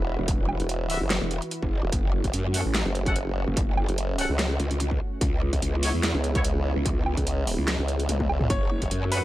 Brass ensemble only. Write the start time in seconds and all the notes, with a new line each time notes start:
0.90 B3 F#4 E5
2.54 C#4 A4 F#5
3.06 C#4 A4 F#5
4.18 C#4 A4 F#5
5.83 B3 E4 C#5
6.35 B3 E4 C#5
9.12 C#4 A4 F#5